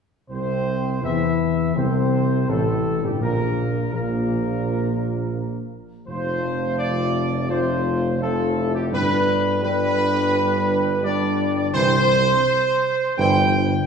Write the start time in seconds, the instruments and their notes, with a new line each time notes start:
0.30 tuba C2, trombone section C3, french horn section C4, trumpet section C5
1.03 tuba E2, trombone section E3, french horn section E4, trumpet section E5
1.76 tuba C2, trombone section C3, french horn section C4, trumpet section C5
2.49 tuba A1, trombone section A2, french horn section A3, trumpet section A4
3.03 tuba G1, trombone section G2, french horn section G3, trumpet section G4
3.21 tuba A#1, trombone section A#2, french horn section A#3, trumpet section A#4
3.93 tuba A#1, trombone section A#2, french horn section A#3, trumpet section A#4
6.07 tuba F1, trombone section C3 F3, french horn section A3 F4, trumpet section C5
6.78 trumpet section D5
7.48 trombone section C3 F3, french horn section A3 F4, trumpet section C5
8.20 trombone section C3 F3, french horn section A3 F4, trumpet section A4
8.56 french horn section E4
8.75 trumpet section G4
8.90 tuba G1, trombone section G2 G3, french horn section G3 D4, trumpet section B4
9.62 trombone section G2 G3, french horn section G3 D4, trumpet section B4
11.03 trombone section G2 G3, french horn section G3 D4, trumpet section D5
11.57 trumpet section D5
11.73 tuba C2, trombone section G2 E3, french horn section G3 C4, trumpet section C5
13.17 tuba G1, trombone section G2 E3, french horn section G3 C4, trumpet section G5